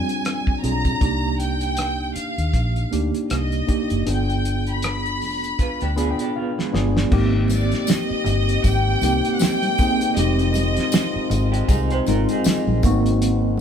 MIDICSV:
0, 0, Header, 1, 8, 480
1, 0, Start_track
1, 0, Tempo, 762389
1, 637, Time_signature, 4, 2, 24, 8
1, 8566, End_track
2, 0, Start_track
2, 0, Title_t, "Violin section"
2, 0, Program_c, 0, 48
2, 0, Note_on_c, 0, 80, 91
2, 377, Note_off_c, 0, 80, 0
2, 404, Note_on_c, 0, 82, 92
2, 881, Note_off_c, 0, 82, 0
2, 889, Note_on_c, 0, 79, 89
2, 1339, Note_off_c, 0, 79, 0
2, 1368, Note_on_c, 0, 77, 73
2, 1844, Note_off_c, 0, 77, 0
2, 2090, Note_on_c, 0, 75, 80
2, 2540, Note_off_c, 0, 75, 0
2, 2576, Note_on_c, 0, 79, 83
2, 2948, Note_off_c, 0, 79, 0
2, 2954, Note_on_c, 0, 83, 86
2, 3908, Note_off_c, 0, 83, 0
2, 4745, Note_on_c, 0, 74, 82
2, 4958, Note_off_c, 0, 74, 0
2, 4976, Note_on_c, 0, 75, 95
2, 5449, Note_off_c, 0, 75, 0
2, 5452, Note_on_c, 0, 79, 102
2, 5884, Note_on_c, 0, 78, 73
2, 5890, Note_off_c, 0, 79, 0
2, 5922, Note_off_c, 0, 78, 0
2, 5930, Note_on_c, 0, 79, 103
2, 6404, Note_on_c, 0, 75, 93
2, 6406, Note_off_c, 0, 79, 0
2, 7362, Note_off_c, 0, 75, 0
2, 8566, End_track
3, 0, Start_track
3, 0, Title_t, "Clean electric guitar"
3, 0, Program_c, 1, 27
3, 3519, Note_on_c, 1, 71, 52
3, 3526, Note_on_c, 1, 65, 48
3, 3653, Note_off_c, 1, 71, 0
3, 3656, Note_off_c, 1, 65, 0
3, 3663, Note_on_c, 1, 62, 54
3, 3666, Note_on_c, 1, 67, 55
3, 3757, Note_off_c, 1, 67, 0
3, 3758, Note_off_c, 1, 62, 0
3, 3764, Note_on_c, 1, 68, 63
3, 3767, Note_on_c, 1, 62, 55
3, 3895, Note_off_c, 1, 68, 0
3, 3897, Note_off_c, 1, 62, 0
3, 3908, Note_on_c, 1, 67, 65
3, 3912, Note_on_c, 1, 62, 52
3, 4000, Note_off_c, 1, 67, 0
3, 4003, Note_off_c, 1, 62, 0
3, 4009, Note_on_c, 1, 65, 65
3, 4016, Note_on_c, 1, 59, 51
3, 4138, Note_off_c, 1, 65, 0
3, 4140, Note_off_c, 1, 59, 0
3, 4143, Note_on_c, 1, 62, 54
3, 4148, Note_on_c, 1, 56, 45
3, 4466, Note_off_c, 1, 62, 0
3, 4468, Note_off_c, 1, 56, 0
3, 7252, Note_on_c, 1, 67, 64
3, 7256, Note_on_c, 1, 62, 52
3, 7352, Note_off_c, 1, 67, 0
3, 7354, Note_off_c, 1, 62, 0
3, 7355, Note_on_c, 1, 68, 70
3, 7359, Note_on_c, 1, 63, 60
3, 7490, Note_off_c, 1, 68, 0
3, 7492, Note_off_c, 1, 63, 0
3, 7502, Note_on_c, 1, 72, 74
3, 7505, Note_on_c, 1, 67, 62
3, 7597, Note_off_c, 1, 72, 0
3, 7598, Note_off_c, 1, 67, 0
3, 7602, Note_on_c, 1, 70, 71
3, 7607, Note_on_c, 1, 65, 64
3, 7734, Note_off_c, 1, 70, 0
3, 7736, Note_off_c, 1, 65, 0
3, 7742, Note_on_c, 1, 68, 59
3, 7746, Note_on_c, 1, 63, 54
3, 8064, Note_off_c, 1, 68, 0
3, 8066, Note_off_c, 1, 63, 0
3, 8566, End_track
4, 0, Start_track
4, 0, Title_t, "Tine electric piano"
4, 0, Program_c, 2, 4
4, 0, Control_c, 2, 64, 127
4, 0, Note_on_c, 2, 55, 72
4, 0, Note_on_c, 2, 60, 66
4, 0, Note_on_c, 2, 62, 58
4, 0, Note_on_c, 2, 65, 59
4, 277, Note_off_c, 2, 60, 0
4, 279, Note_off_c, 2, 62, 0
4, 279, Note_off_c, 2, 65, 0
4, 281, Note_off_c, 2, 55, 0
4, 393, Note_on_c, 2, 60, 61
4, 400, Note_on_c, 2, 62, 53
4, 401, Note_on_c, 2, 65, 59
4, 405, Note_on_c, 2, 68, 66
4, 578, Note_off_c, 2, 60, 0
4, 582, Note_off_c, 2, 62, 0
4, 583, Note_off_c, 2, 65, 0
4, 584, Note_off_c, 2, 68, 0
4, 632, Note_on_c, 2, 58, 62
4, 632, Note_on_c, 2, 62, 60
4, 636, Note_on_c, 2, 63, 61
4, 638, Note_on_c, 2, 67, 68
4, 643, Control_c, 2, 64, 0
4, 757, Control_c, 2, 64, 127
4, 1331, Note_off_c, 2, 58, 0
4, 1331, Note_off_c, 2, 62, 0
4, 1333, Note_off_c, 2, 63, 0
4, 1334, Note_off_c, 2, 67, 0
4, 1834, Note_on_c, 2, 58, 65
4, 1839, Note_on_c, 2, 62, 58
4, 1842, Note_on_c, 2, 63, 58
4, 1846, Note_on_c, 2, 67, 68
4, 2199, Note_off_c, 2, 58, 0
4, 2202, Note_off_c, 2, 62, 0
4, 2203, Note_off_c, 2, 63, 0
4, 2205, Note_off_c, 2, 67, 0
4, 2311, Note_on_c, 2, 58, 60
4, 2313, Note_on_c, 2, 62, 52
4, 2316, Note_on_c, 2, 63, 54
4, 2320, Note_on_c, 2, 67, 68
4, 2499, Note_off_c, 2, 58, 0
4, 2500, Note_off_c, 2, 62, 0
4, 2502, Note_off_c, 2, 63, 0
4, 2504, Note_off_c, 2, 67, 0
4, 2555, Note_on_c, 2, 59, 69
4, 2559, Note_on_c, 2, 62, 56
4, 2560, Note_on_c, 2, 65, 59
4, 2563, Note_on_c, 2, 68, 68
4, 2567, Control_c, 2, 64, 0
4, 2676, Control_c, 2, 64, 127
4, 3254, Note_off_c, 2, 59, 0
4, 3256, Note_off_c, 2, 62, 0
4, 3257, Note_off_c, 2, 65, 0
4, 3258, Note_off_c, 2, 68, 0
4, 3753, Note_on_c, 2, 59, 73
4, 3754, Note_on_c, 2, 62, 66
4, 3755, Note_on_c, 2, 83, 64
4, 3760, Note_on_c, 2, 65, 67
4, 3760, Note_on_c, 2, 68, 81
4, 3832, Note_off_c, 2, 83, 0
4, 3845, Note_on_c, 2, 79, 59
4, 3992, Note_off_c, 2, 79, 0
4, 4004, Note_on_c, 2, 77, 65
4, 4120, Note_off_c, 2, 59, 0
4, 4121, Note_off_c, 2, 62, 0
4, 4123, Note_off_c, 2, 65, 0
4, 4124, Note_off_c, 2, 68, 0
4, 4226, Note_off_c, 2, 77, 0
4, 4235, Note_on_c, 2, 59, 68
4, 4235, Note_on_c, 2, 62, 66
4, 4240, Note_on_c, 2, 65, 67
4, 4241, Note_on_c, 2, 74, 58
4, 4243, Note_on_c, 2, 68, 78
4, 4422, Note_off_c, 2, 59, 0
4, 4422, Note_off_c, 2, 62, 0
4, 4425, Note_off_c, 2, 65, 0
4, 4426, Note_off_c, 2, 68, 0
4, 4465, Note_off_c, 2, 74, 0
4, 4479, Note_on_c, 2, 58, 87
4, 4485, Note_on_c, 2, 60, 79
4, 4486, Note_on_c, 2, 63, 73
4, 4490, Note_on_c, 2, 67, 97
4, 4492, Control_c, 2, 64, 0
4, 4610, Control_c, 2, 64, 127
4, 5177, Note_off_c, 2, 58, 0
4, 5179, Note_off_c, 2, 60, 0
4, 5180, Note_off_c, 2, 63, 0
4, 5182, Note_off_c, 2, 67, 0
4, 5681, Note_on_c, 2, 58, 65
4, 5685, Note_on_c, 2, 60, 58
4, 5685, Note_on_c, 2, 63, 59
4, 5692, Note_on_c, 2, 67, 69
4, 6044, Note_off_c, 2, 58, 0
4, 6046, Note_off_c, 2, 60, 0
4, 6046, Note_off_c, 2, 63, 0
4, 6050, Note_off_c, 2, 67, 0
4, 6166, Note_on_c, 2, 58, 72
4, 6168, Note_on_c, 2, 60, 67
4, 6171, Note_on_c, 2, 63, 61
4, 6175, Note_on_c, 2, 68, 78
4, 6348, Note_off_c, 2, 58, 0
4, 6348, Note_off_c, 2, 60, 0
4, 6350, Note_off_c, 2, 63, 0
4, 6352, Note_off_c, 2, 68, 0
4, 6407, Note_on_c, 2, 56, 68
4, 6407, Note_on_c, 2, 60, 67
4, 6409, Control_c, 2, 64, 0
4, 6411, Note_on_c, 2, 63, 71
4, 6414, Note_on_c, 2, 67, 81
4, 6537, Control_c, 2, 64, 127
4, 7100, Note_off_c, 2, 56, 0
4, 7100, Note_off_c, 2, 60, 0
4, 7102, Note_off_c, 2, 63, 0
4, 7103, Note_off_c, 2, 67, 0
4, 7601, Note_on_c, 2, 56, 77
4, 7605, Note_on_c, 2, 60, 76
4, 7609, Note_on_c, 2, 63, 74
4, 7610, Note_on_c, 2, 65, 82
4, 7963, Note_off_c, 2, 56, 0
4, 7965, Note_off_c, 2, 60, 0
4, 7967, Note_off_c, 2, 63, 0
4, 7968, Note_off_c, 2, 65, 0
4, 8083, Note_on_c, 2, 58, 96
4, 8085, Note_on_c, 2, 59, 71
4, 8088, Control_c, 2, 64, 0
4, 8090, Note_on_c, 2, 63, 83
4, 8094, Note_on_c, 2, 66, 99
4, 8127, Note_on_c, 2, 60, 81
4, 8130, Note_off_c, 2, 59, 0
4, 8194, Control_c, 2, 64, 127
4, 8566, Note_off_c, 2, 58, 0
4, 8566, Note_off_c, 2, 60, 0
4, 8566, Note_off_c, 2, 63, 0
4, 8566, Note_off_c, 2, 66, 0
4, 8566, End_track
5, 0, Start_track
5, 0, Title_t, "French horn section"
5, 0, Program_c, 3, 60
5, 4485, Note_on_c, 3, 51, 76
5, 4485, Note_on_c, 3, 67, 80
5, 4489, Note_on_c, 3, 56, 73
5, 4489, Note_on_c, 3, 60, 69
5, 6384, Note_off_c, 3, 67, 0
5, 6405, Note_on_c, 3, 65, 92
5, 8065, Note_off_c, 3, 65, 0
5, 8081, Note_on_c, 3, 66, 85
5, 8566, Note_off_c, 3, 51, 0
5, 8566, Note_off_c, 3, 56, 0
5, 8566, Note_off_c, 3, 60, 0
5, 8566, Note_off_c, 3, 66, 0
5, 8566, End_track
6, 0, Start_track
6, 0, Title_t, "Fingered electric bass"
6, 0, Program_c, 4, 33
6, 401, Note_on_c, 4, 35, 78
6, 589, Note_off_c, 4, 35, 0
6, 638, Note_on_c, 4, 36, 88
6, 1333, Note_off_c, 4, 36, 0
6, 1499, Note_on_c, 4, 39, 68
6, 1578, Note_off_c, 4, 39, 0
6, 1596, Note_on_c, 4, 34, 81
6, 1787, Note_off_c, 4, 34, 0
6, 1845, Note_on_c, 4, 38, 70
6, 1953, Note_off_c, 4, 38, 0
6, 2084, Note_on_c, 4, 36, 78
6, 2272, Note_off_c, 4, 36, 0
6, 2463, Note_on_c, 4, 30, 82
6, 2541, Note_off_c, 4, 30, 0
6, 2562, Note_on_c, 4, 31, 88
6, 3281, Note_off_c, 4, 31, 0
6, 3281, Note_on_c, 4, 29, 76
6, 3471, Note_off_c, 4, 29, 0
6, 3664, Note_on_c, 4, 38, 71
6, 3853, Note_off_c, 4, 38, 0
6, 4241, Note_on_c, 4, 31, 70
6, 4432, Note_off_c, 4, 31, 0
6, 4484, Note_on_c, 4, 32, 97
6, 4863, Note_off_c, 4, 32, 0
6, 5198, Note_on_c, 4, 31, 77
6, 5390, Note_off_c, 4, 31, 0
6, 5442, Note_on_c, 4, 32, 87
6, 5632, Note_off_c, 4, 32, 0
6, 5677, Note_on_c, 4, 36, 82
6, 5789, Note_off_c, 4, 36, 0
6, 6402, Note_on_c, 4, 29, 103
6, 6781, Note_off_c, 4, 29, 0
6, 7116, Note_on_c, 4, 32, 87
6, 7308, Note_off_c, 4, 32, 0
6, 7360, Note_on_c, 4, 36, 91
6, 7550, Note_off_c, 4, 36, 0
6, 7603, Note_on_c, 4, 32, 80
6, 7712, Note_off_c, 4, 32, 0
6, 7979, Note_on_c, 4, 34, 83
6, 8059, Note_off_c, 4, 34, 0
6, 8082, Note_on_c, 4, 32, 90
6, 8566, Note_off_c, 4, 32, 0
6, 8566, End_track
7, 0, Start_track
7, 0, Title_t, "Muted fingered electric bass strokes"
7, 1360, Note_on_c, 9, 29, 41
7, 1423, Note_off_c, 9, 29, 0
7, 3521, Note_on_c, 9, 29, 41
7, 3584, Note_off_c, 9, 29, 0
7, 5102, Note_on_c, 9, 29, 49
7, 5165, Note_off_c, 9, 29, 0
7, 7024, Note_on_c, 9, 29, 49
7, 7087, Note_off_c, 9, 29, 0
7, 7842, Note_on_c, 9, 29, 44
7, 7905, Note_off_c, 9, 29, 0
7, 8566, End_track
8, 0, Start_track
8, 0, Title_t, "Drums"
8, 57, Note_on_c, 9, 42, 45
8, 120, Note_off_c, 9, 42, 0
8, 158, Note_on_c, 9, 42, 81
8, 164, Note_on_c, 9, 37, 94
8, 220, Note_off_c, 9, 42, 0
8, 227, Note_off_c, 9, 37, 0
8, 296, Note_on_c, 9, 36, 89
8, 359, Note_off_c, 9, 36, 0
8, 401, Note_on_c, 9, 42, 63
8, 464, Note_off_c, 9, 42, 0
8, 535, Note_on_c, 9, 36, 82
8, 535, Note_on_c, 9, 42, 46
8, 598, Note_off_c, 9, 36, 0
8, 598, Note_off_c, 9, 42, 0
8, 637, Note_on_c, 9, 36, 101
8, 638, Note_on_c, 9, 42, 84
8, 700, Note_off_c, 9, 36, 0
8, 701, Note_off_c, 9, 42, 0
8, 880, Note_on_c, 9, 42, 56
8, 943, Note_off_c, 9, 42, 0
8, 1013, Note_on_c, 9, 42, 41
8, 1076, Note_off_c, 9, 42, 0
8, 1113, Note_on_c, 9, 42, 83
8, 1125, Note_on_c, 9, 37, 96
8, 1176, Note_off_c, 9, 42, 0
8, 1188, Note_off_c, 9, 37, 0
8, 1358, Note_on_c, 9, 42, 67
8, 1421, Note_off_c, 9, 42, 0
8, 1501, Note_on_c, 9, 42, 38
8, 1564, Note_off_c, 9, 42, 0
8, 1596, Note_on_c, 9, 36, 74
8, 1597, Note_on_c, 9, 42, 71
8, 1659, Note_off_c, 9, 36, 0
8, 1660, Note_off_c, 9, 42, 0
8, 1738, Note_on_c, 9, 42, 33
8, 1801, Note_off_c, 9, 42, 0
8, 1842, Note_on_c, 9, 42, 70
8, 1905, Note_off_c, 9, 42, 0
8, 1980, Note_on_c, 9, 42, 42
8, 2043, Note_off_c, 9, 42, 0
8, 2078, Note_on_c, 9, 42, 85
8, 2085, Note_on_c, 9, 37, 91
8, 2141, Note_off_c, 9, 42, 0
8, 2148, Note_off_c, 9, 37, 0
8, 2216, Note_on_c, 9, 42, 32
8, 2279, Note_off_c, 9, 42, 0
8, 2321, Note_on_c, 9, 36, 83
8, 2321, Note_on_c, 9, 42, 63
8, 2384, Note_off_c, 9, 36, 0
8, 2384, Note_off_c, 9, 42, 0
8, 2456, Note_on_c, 9, 42, 51
8, 2519, Note_off_c, 9, 42, 0
8, 2560, Note_on_c, 9, 42, 84
8, 2623, Note_off_c, 9, 42, 0
8, 2706, Note_on_c, 9, 42, 31
8, 2768, Note_off_c, 9, 42, 0
8, 2803, Note_on_c, 9, 42, 60
8, 2866, Note_off_c, 9, 42, 0
8, 2938, Note_on_c, 9, 42, 41
8, 3001, Note_off_c, 9, 42, 0
8, 3037, Note_on_c, 9, 42, 84
8, 3049, Note_on_c, 9, 37, 101
8, 3100, Note_off_c, 9, 42, 0
8, 3112, Note_off_c, 9, 37, 0
8, 3184, Note_on_c, 9, 42, 34
8, 3247, Note_off_c, 9, 42, 0
8, 3283, Note_on_c, 9, 46, 46
8, 3346, Note_off_c, 9, 46, 0
8, 3424, Note_on_c, 9, 42, 43
8, 3487, Note_off_c, 9, 42, 0
8, 3519, Note_on_c, 9, 36, 80
8, 3520, Note_on_c, 9, 42, 71
8, 3582, Note_off_c, 9, 36, 0
8, 3583, Note_off_c, 9, 42, 0
8, 3656, Note_on_c, 9, 42, 33
8, 3719, Note_off_c, 9, 42, 0
8, 3762, Note_on_c, 9, 42, 69
8, 3825, Note_off_c, 9, 42, 0
8, 3898, Note_on_c, 9, 42, 46
8, 3961, Note_off_c, 9, 42, 0
8, 4148, Note_on_c, 9, 38, 53
8, 4211, Note_off_c, 9, 38, 0
8, 4247, Note_on_c, 9, 38, 70
8, 4310, Note_off_c, 9, 38, 0
8, 4386, Note_on_c, 9, 38, 75
8, 4449, Note_off_c, 9, 38, 0
8, 4480, Note_on_c, 9, 49, 82
8, 4482, Note_on_c, 9, 36, 112
8, 4484, Note_on_c, 9, 62, 34
8, 4543, Note_off_c, 9, 49, 0
8, 4545, Note_off_c, 9, 36, 0
8, 4547, Note_off_c, 9, 62, 0
8, 4710, Note_on_c, 9, 62, 52
8, 4719, Note_on_c, 9, 54, 50
8, 4724, Note_on_c, 9, 42, 66
8, 4773, Note_off_c, 9, 62, 0
8, 4781, Note_off_c, 9, 54, 0
8, 4787, Note_off_c, 9, 42, 0
8, 4858, Note_on_c, 9, 42, 42
8, 4869, Note_on_c, 9, 38, 37
8, 4921, Note_off_c, 9, 42, 0
8, 4932, Note_off_c, 9, 38, 0
8, 4955, Note_on_c, 9, 54, 74
8, 4958, Note_on_c, 9, 63, 60
8, 4960, Note_on_c, 9, 42, 90
8, 4972, Note_on_c, 9, 38, 108
8, 5018, Note_off_c, 9, 54, 0
8, 5021, Note_off_c, 9, 63, 0
8, 5023, Note_off_c, 9, 42, 0
8, 5035, Note_off_c, 9, 38, 0
8, 5190, Note_on_c, 9, 64, 68
8, 5201, Note_on_c, 9, 42, 71
8, 5253, Note_off_c, 9, 64, 0
8, 5264, Note_off_c, 9, 42, 0
8, 5344, Note_on_c, 9, 42, 46
8, 5407, Note_off_c, 9, 42, 0
8, 5438, Note_on_c, 9, 62, 49
8, 5440, Note_on_c, 9, 36, 80
8, 5440, Note_on_c, 9, 42, 77
8, 5440, Note_on_c, 9, 54, 47
8, 5501, Note_off_c, 9, 62, 0
8, 5503, Note_off_c, 9, 36, 0
8, 5503, Note_off_c, 9, 42, 0
8, 5503, Note_off_c, 9, 54, 0
8, 5675, Note_on_c, 9, 54, 44
8, 5676, Note_on_c, 9, 62, 51
8, 5686, Note_on_c, 9, 42, 79
8, 5738, Note_off_c, 9, 54, 0
8, 5739, Note_off_c, 9, 62, 0
8, 5749, Note_off_c, 9, 42, 0
8, 5821, Note_on_c, 9, 42, 48
8, 5884, Note_off_c, 9, 42, 0
8, 5914, Note_on_c, 9, 54, 69
8, 5918, Note_on_c, 9, 63, 83
8, 5924, Note_on_c, 9, 42, 89
8, 5931, Note_on_c, 9, 38, 102
8, 5977, Note_off_c, 9, 54, 0
8, 5981, Note_off_c, 9, 63, 0
8, 5987, Note_off_c, 9, 42, 0
8, 5993, Note_off_c, 9, 38, 0
8, 6059, Note_on_c, 9, 63, 62
8, 6062, Note_on_c, 9, 42, 36
8, 6122, Note_off_c, 9, 63, 0
8, 6125, Note_off_c, 9, 42, 0
8, 6158, Note_on_c, 9, 54, 44
8, 6164, Note_on_c, 9, 36, 90
8, 6165, Note_on_c, 9, 42, 65
8, 6221, Note_off_c, 9, 54, 0
8, 6227, Note_off_c, 9, 36, 0
8, 6228, Note_off_c, 9, 42, 0
8, 6303, Note_on_c, 9, 42, 54
8, 6366, Note_off_c, 9, 42, 0
8, 6400, Note_on_c, 9, 54, 35
8, 6400, Note_on_c, 9, 62, 31
8, 6402, Note_on_c, 9, 42, 90
8, 6463, Note_off_c, 9, 54, 0
8, 6463, Note_off_c, 9, 62, 0
8, 6465, Note_off_c, 9, 42, 0
8, 6543, Note_on_c, 9, 42, 36
8, 6606, Note_off_c, 9, 42, 0
8, 6631, Note_on_c, 9, 62, 52
8, 6635, Note_on_c, 9, 54, 49
8, 6644, Note_on_c, 9, 42, 66
8, 6694, Note_off_c, 9, 62, 0
8, 6698, Note_off_c, 9, 54, 0
8, 6707, Note_off_c, 9, 42, 0
8, 6778, Note_on_c, 9, 42, 48
8, 6789, Note_on_c, 9, 38, 37
8, 6841, Note_off_c, 9, 42, 0
8, 6852, Note_off_c, 9, 38, 0
8, 6874, Note_on_c, 9, 54, 82
8, 6876, Note_on_c, 9, 42, 88
8, 6880, Note_on_c, 9, 63, 65
8, 6888, Note_on_c, 9, 38, 113
8, 6937, Note_off_c, 9, 54, 0
8, 6939, Note_off_c, 9, 42, 0
8, 6943, Note_off_c, 9, 63, 0
8, 6950, Note_off_c, 9, 38, 0
8, 7114, Note_on_c, 9, 64, 67
8, 7121, Note_on_c, 9, 42, 75
8, 7122, Note_on_c, 9, 54, 33
8, 7177, Note_off_c, 9, 64, 0
8, 7184, Note_off_c, 9, 42, 0
8, 7184, Note_off_c, 9, 54, 0
8, 7264, Note_on_c, 9, 42, 46
8, 7327, Note_off_c, 9, 42, 0
8, 7357, Note_on_c, 9, 36, 86
8, 7358, Note_on_c, 9, 42, 81
8, 7359, Note_on_c, 9, 54, 48
8, 7361, Note_on_c, 9, 62, 46
8, 7420, Note_off_c, 9, 36, 0
8, 7421, Note_off_c, 9, 42, 0
8, 7422, Note_off_c, 9, 54, 0
8, 7424, Note_off_c, 9, 62, 0
8, 7495, Note_on_c, 9, 42, 36
8, 7557, Note_off_c, 9, 42, 0
8, 7596, Note_on_c, 9, 54, 44
8, 7596, Note_on_c, 9, 62, 53
8, 7602, Note_on_c, 9, 42, 77
8, 7659, Note_off_c, 9, 54, 0
8, 7659, Note_off_c, 9, 62, 0
8, 7665, Note_off_c, 9, 42, 0
8, 7736, Note_on_c, 9, 42, 46
8, 7799, Note_off_c, 9, 42, 0
8, 7834, Note_on_c, 9, 54, 70
8, 7839, Note_on_c, 9, 63, 83
8, 7842, Note_on_c, 9, 42, 92
8, 7848, Note_on_c, 9, 38, 100
8, 7897, Note_off_c, 9, 54, 0
8, 7902, Note_off_c, 9, 63, 0
8, 7905, Note_off_c, 9, 42, 0
8, 7911, Note_off_c, 9, 38, 0
8, 7980, Note_on_c, 9, 63, 63
8, 8043, Note_off_c, 9, 63, 0
8, 8077, Note_on_c, 9, 54, 46
8, 8080, Note_on_c, 9, 36, 99
8, 8086, Note_on_c, 9, 42, 68
8, 8140, Note_off_c, 9, 54, 0
8, 8143, Note_off_c, 9, 36, 0
8, 8149, Note_off_c, 9, 42, 0
8, 8222, Note_on_c, 9, 42, 51
8, 8285, Note_off_c, 9, 42, 0
8, 8320, Note_on_c, 9, 62, 33
8, 8322, Note_on_c, 9, 42, 94
8, 8383, Note_off_c, 9, 62, 0
8, 8385, Note_off_c, 9, 42, 0
8, 8547, Note_on_c, 9, 62, 53
8, 8566, Note_off_c, 9, 62, 0
8, 8566, End_track
0, 0, End_of_file